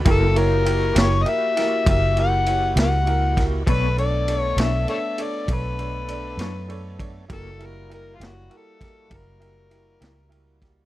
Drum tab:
RD |xxxxxxxxxxxx|xxxxxxxxxxxx|xxxxxxxxxxxx|
SD |---o-o---o-o|---o-----o--|---o-o---o-o|
BD |o-----o----o|o-----o----o|o----oo----o|